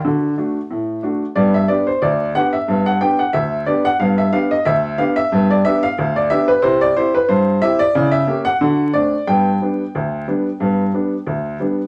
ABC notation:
X:1
M:2/4
L:1/16
Q:"Swing 16ths" 1/4=91
K:G
V:1 name="Upright piano"
d4 z4 | d e d c d2 f e- | e f g f e2 d f | =f e f _e =e2 f e- |
e d e =f2 d e B | c d c B c2 e d- | d e2 f3 d2 | g8- |
g6 z2 |]
V:2 name="Upright piano"
[D,F]2 [A,DF]2 A,,2 [A,DF]2 | [G,,B,]2 [B,DG]2 D,,2 [B,DG]2 | [G,,B,]2 [B,DG]2 D,,2 [B,DG]2 | [G,,B,]2 [B,DG]2 D,,2 [B,DG]2 |
[G,,B,]2 [B,DG]2 D,,2 [B,DG]2 | [C,E]2 [CEG]2 G,,2 [CEG]2 | [^C,E]2 [^A,^CG]2 [D,F]2 [=A,=CD]2 | [G,,B,]2 [G,B,D]2 D,,2 [G,B,D]2 |
[G,,B,]2 [G,B,D]2 D,,2 [G,B,D]2 |]